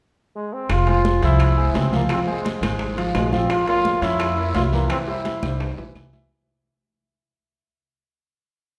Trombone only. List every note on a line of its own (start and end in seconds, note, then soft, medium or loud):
0.36 0.55 G#3 medium
0.53 0.73 C4 medium
0.71 0.88 F4 loud
0.90 1.21 F4 loud
1.25 1.79 E4 loud
1.78 1.94 C4 medium
1.96 2.03 A#3 medium
2.13 2.20 C4 medium
2.30 2.78 G#3 medium
3.16 3.36 G#3 medium
3.34 3.53 C4 loud
3.51 3.68 F4 loud
3.69 4.01 F4 loud
4.03 4.52 E4 loud
4.55 4.63 F4 medium
4.73 4.89 A#3 medium
4.91 4.99 C4 medium
5.09 5.57 E4 loud